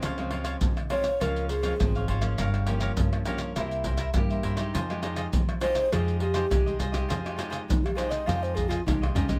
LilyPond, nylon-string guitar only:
\new Staff \with { instrumentName = "Nylon-string guitar" } { \time 4/4 \key f \minor \tempo 4 = 102 << { <f aes c'>16 <f aes c'>16 <f aes c'>8. r16 <f aes c'>16 r16 <f aes c'>8 r16 <f aes c'>16 <f aes c'>8. <f bes des'>16~ | <f bes des'>16 r16 <f bes des'>4 <f bes des'>8 <bes e' g'>8. r16 <bes e' g'>8. <aes ees' g'>16~ | <aes ees' g'>16 <aes ees' g'>16 <aes ees' g'>8. r16 <aes ees' g'>8 <aes ees' g'>8 r16 <aes ees' g'>16 <aes ees' g'>8 r16 <aes ees' g'>16~ | <aes ees' g'>16 <aes ees' g'>16 <aes ees' g'>8. r16 <aes ees' g'>8 <aes ees' g'>8. r16 <aes ees' g'>8 <aes ees' g'>16 <aes ees' g'>16 | } \\ { des4 aes,4 des4 aes,4 | g,4 g,4 c4 g,4 | f4 c4 f4 c4 | f4 c4 f4 c4 | } >> }